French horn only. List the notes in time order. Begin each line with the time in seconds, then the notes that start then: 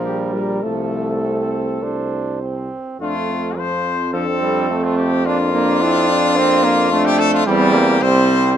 Already playing: F3
0.34 G3
0.63 A3
3.01 D4
3.30 C4
3.58 C4
4.14 D4
4.70 C4
5.26 D4
5.54 D4
5.81 E4
6.09 D4
6.92 D4
7.47 C4
8.02 C4